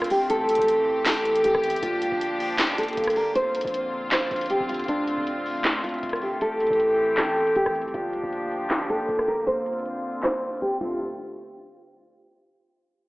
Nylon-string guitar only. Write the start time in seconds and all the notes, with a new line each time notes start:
0.11 G4
0.30 A4
1.06 A4
1.45 G4
1.82 F4
2.78 A4
3.17 A#4
3.35 C5
4.12 C5
4.50 G4
4.69 F4
4.89 D4
5.84 F4
6.22 G4
6.41 A4
7.18 A4
7.56 G4
7.94 F4
8.90 A4
9.28 A#4
9.47 C5
10.24 C5
10.62 G4
10.81 F4